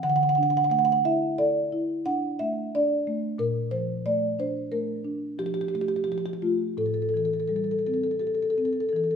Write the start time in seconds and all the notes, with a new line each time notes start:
0.03 D3 F#5
0.10 F#5
0.16 F#5
0.23 F#5
0.29 F#5
0.35 D4 F#5
0.43 F#5
0.50 F#5
0.57 F#5
0.64 F#5
0.70 A3 F#5
0.79 F#5
0.85 F#5
0.92 F#5
1.05 E4 E5
1.38 A4 D5
1.72 E4
2.05 D4 F#5
2.39 A3 E5
2.75 D4 D5
3.07 A3
3.38 A#2 A#4
3.71 F3 C5
4.06 A3 D5
4.39 D4 C5
4.72 A3 A#4
5.05 D4
5.38 F3 G4
5.46 G4
5.54 G4
5.61 G4
5.68 G4
5.74 A3 G4
5.81 G4
5.88 G4
5.96 G4
6.04 F3 G4
6.12 G4
6.18 G4
6.26 G4
6.33 G4
6.42 A3 F4
6.77 A2 A4
6.86 A4
6.94 A4
7.02 A4
7.09 A4
7.14 E3 A4
7.25 A4
7.34 A4
7.40 A4
7.48 G3 A4
7.56 A4
7.64 A4
7.71 A4
7.79 A4
7.86 C4 A4
7.94 A4
8.04 A4
8.11 A4
8.19 G4 A4
8.27 A4
8.35 A4
8.42 A4
8.50 A4
8.58 C4 A4
8.65 A4
8.73 A4
8.81 A4
8.89 E3 A4
8.96 A4
9.04 A4
9.11 A4